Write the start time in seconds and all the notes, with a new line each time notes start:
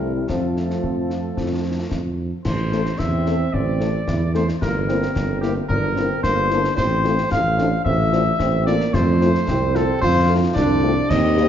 Already playing: C2 G3 A3 C4 E4 A#4
0.15 G3
0.28 F2 F3 A3 C4 F4 A4, concert bass drum, snare
0.57 snare
0.70 snare
0.84 F2, concert bass drum
1.10 snare
1.37 F2, concert bass drum, snare
1.91 F2, concert bass drum, snare
2.45 A1 C5, concert bass drum, snare, crash
2.72 A3 C4 A4, snare
2.86 snare
2.98 E2 C4 E5, concert bass drum, snare
3.26 A3 C4 A4, snare
3.53 A1 D5, concert bass drum
3.80 A3 C4 A4, snare
4.08 E2 E4, concert bass drum, snare
4.34 A3 C4 A4 C5, snare
4.49 snare
4.61 G1 A#3 A#4, concert bass drum, snare, crash
4.88 A#3 C4 E4, snare
5.03 snare
5.15 G1, concert bass drum, snare
5.41 A#3 C4 E4 G4, snare
5.68 G1 D4 A#4, concert bass drum
5.96 A#3 C4 E4, snare
6.23 G1 A#3 C5, concert bass drum, snare
6.50 A#3 C4 D4 E4, snare
6.64 snare
6.77 A1 C4 C5, concert bass drum, snare, crash
7.04 A3 C4 F4, snare
7.18 snare
7.30 A1 A3 F5, concert bass drum, snare
7.57 A3 C4 D4 F4, snare
7.85 A1 C4 E5, concert bass drum
8.12 A3 C4 D4 F4, snare
8.40 A1 C4, concert bass drum, snare
8.66 A3 A#3 C4 F4 D5, snare
8.81 snare
8.94 F2 A3 C5, concert bass drum, snare, crash
9.21 A3 C4 F4, snare
9.35 snare
9.48 C2 C4, concert bass drum, snare
9.75 A3 C4 F4 A4, snare
10.01 F2 F4 C5, concert bass drum, snare
10.29 A3 C4 F4
10.55 C2 D4 D5, concert bass drum, snare
10.83 A3 C4 F4
11.10 D#2 C4 D#5, concert bass drum, snare, crash
11.37 G3 A#3 C4 G4, snare